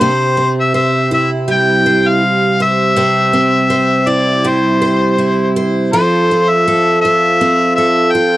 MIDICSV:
0, 0, Header, 1, 3, 480
1, 0, Start_track
1, 0, Key_signature, 0, "major"
1, 0, Tempo, 740741
1, 1918, Time_signature, 4, 2, 24, 8
1, 5425, End_track
2, 0, Start_track
2, 0, Title_t, "Harmonica"
2, 0, Program_c, 0, 22
2, 0, Note_on_c, 0, 72, 92
2, 344, Note_off_c, 0, 72, 0
2, 390, Note_on_c, 0, 76, 85
2, 480, Note_off_c, 0, 76, 0
2, 486, Note_on_c, 0, 76, 91
2, 705, Note_off_c, 0, 76, 0
2, 737, Note_on_c, 0, 76, 87
2, 841, Note_off_c, 0, 76, 0
2, 980, Note_on_c, 0, 79, 104
2, 1344, Note_on_c, 0, 77, 108
2, 1354, Note_off_c, 0, 79, 0
2, 1685, Note_off_c, 0, 77, 0
2, 1698, Note_on_c, 0, 76, 106
2, 2650, Note_on_c, 0, 74, 89
2, 2659, Note_off_c, 0, 76, 0
2, 2900, Note_on_c, 0, 72, 81
2, 2910, Note_off_c, 0, 74, 0
2, 3609, Note_off_c, 0, 72, 0
2, 3843, Note_on_c, 0, 72, 99
2, 4206, Note_on_c, 0, 76, 106
2, 4216, Note_off_c, 0, 72, 0
2, 4541, Note_off_c, 0, 76, 0
2, 4545, Note_on_c, 0, 76, 108
2, 5005, Note_off_c, 0, 76, 0
2, 5025, Note_on_c, 0, 76, 95
2, 5259, Note_on_c, 0, 79, 106
2, 5269, Note_off_c, 0, 76, 0
2, 5425, Note_off_c, 0, 79, 0
2, 5425, End_track
3, 0, Start_track
3, 0, Title_t, "Twelve-string acoustic guitar"
3, 0, Program_c, 1, 25
3, 6, Note_on_c, 1, 48, 78
3, 10, Note_on_c, 1, 72, 60
3, 240, Note_on_c, 1, 60, 55
3, 478, Note_off_c, 1, 72, 0
3, 481, Note_on_c, 1, 72, 62
3, 720, Note_on_c, 1, 64, 59
3, 958, Note_on_c, 1, 55, 66
3, 1203, Note_off_c, 1, 72, 0
3, 1206, Note_on_c, 1, 72, 67
3, 1440, Note_off_c, 1, 64, 0
3, 1683, Note_off_c, 1, 72, 0
3, 1686, Note_on_c, 1, 72, 67
3, 1913, Note_off_c, 1, 48, 0
3, 1921, Note_on_c, 1, 48, 78
3, 1924, Note_off_c, 1, 72, 0
3, 1927, Note_on_c, 1, 72, 66
3, 2157, Note_off_c, 1, 60, 0
3, 2160, Note_on_c, 1, 60, 61
3, 2395, Note_off_c, 1, 72, 0
3, 2398, Note_on_c, 1, 72, 63
3, 2637, Note_on_c, 1, 64, 60
3, 2872, Note_off_c, 1, 55, 0
3, 2880, Note_on_c, 1, 55, 74
3, 3118, Note_off_c, 1, 72, 0
3, 3121, Note_on_c, 1, 72, 61
3, 3352, Note_off_c, 1, 64, 0
3, 3359, Note_on_c, 1, 64, 59
3, 3602, Note_off_c, 1, 72, 0
3, 3605, Note_on_c, 1, 72, 67
3, 3839, Note_off_c, 1, 55, 0
3, 3840, Note_off_c, 1, 48, 0
3, 3844, Note_on_c, 1, 53, 85
3, 3847, Note_off_c, 1, 72, 0
3, 3850, Note_on_c, 1, 69, 55
3, 3891, Note_off_c, 1, 64, 0
3, 4088, Note_off_c, 1, 60, 0
3, 4090, Note_on_c, 1, 60, 59
3, 4319, Note_off_c, 1, 69, 0
3, 4326, Note_on_c, 1, 69, 69
3, 4568, Note_on_c, 1, 65, 64
3, 4799, Note_off_c, 1, 60, 0
3, 4801, Note_on_c, 1, 60, 71
3, 5034, Note_off_c, 1, 69, 0
3, 5042, Note_on_c, 1, 69, 68
3, 5278, Note_off_c, 1, 65, 0
3, 5281, Note_on_c, 1, 65, 60
3, 5425, Note_off_c, 1, 53, 0
3, 5425, Note_off_c, 1, 60, 0
3, 5425, Note_off_c, 1, 65, 0
3, 5425, Note_off_c, 1, 69, 0
3, 5425, End_track
0, 0, End_of_file